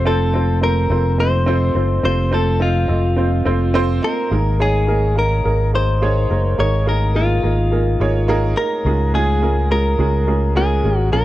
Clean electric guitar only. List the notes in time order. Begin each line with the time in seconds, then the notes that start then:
0.07 A4
0.64 A#4
1.20 C5
2.05 C5
2.34 A4
2.62 F4
4.04 A#4
4.62 G#4
5.19 A#4
5.75 C5
6.60 C#5
6.89 A#4
7.16 F4
8.57 A#4
9.15 G#4
9.72 A#4
10.57 G#4
10.98 F#4
11.13 A#4